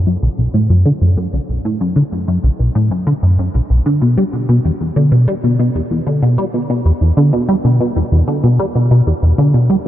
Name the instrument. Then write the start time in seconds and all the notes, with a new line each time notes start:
analog synth bass
0.06 F#2
0.22 B1
0.38 B1
0.54 A2
0.70 F#2
0.85 D3
1.01 F#2
1.17 F#2
1.33 B1
1.49 B1
1.65 A2
1.80 F#2
1.96 D3
2.12 F#2
2.28 F#2
2.44 B1
2.59 B1
2.75 A2
2.91 F#2
3.07 D3
3.23 F#2
3.39 F#2
3.54 B1
3.70 B1
3.86 D3
4.02 B2
4.17 G3
4.33 B2
4.49 B2
4.65 E2
4.81 E2
4.96 D3
5.12 B2
5.28 G3
5.44 B2
5.59 B2
5.75 E2
5.91 E2
6.06 D3
6.22 B2
6.38 G3
6.54 B2
6.70 B2
6.85 E2
7.01 E2
7.17 D3
7.33 B2
7.49 G3
7.64 B2
7.80 B2
7.96 E2
8.12 E2
8.27 D3
8.43 B2
8.59 G3
8.75 B2
8.91 B2
9.07 E2
9.23 E2
9.38 D3
9.54 B2
9.70 G3